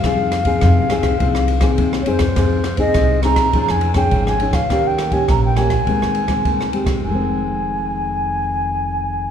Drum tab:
RD |x-xxx-xxx-xxx-xx|x-xxx-xxx-xxx-xx|x-xxx-xxx-xxx-xx|----------------|
SD |r-r-r-rr-r-r-r-r|r-r-r-rr-r-r-r-r|r-r-r-rr-r-r-r-r|----------------|
BD |o--oo--oo--oo--o|o--oo--oo--oo--o|o--oo--oo--oo--o|----------------|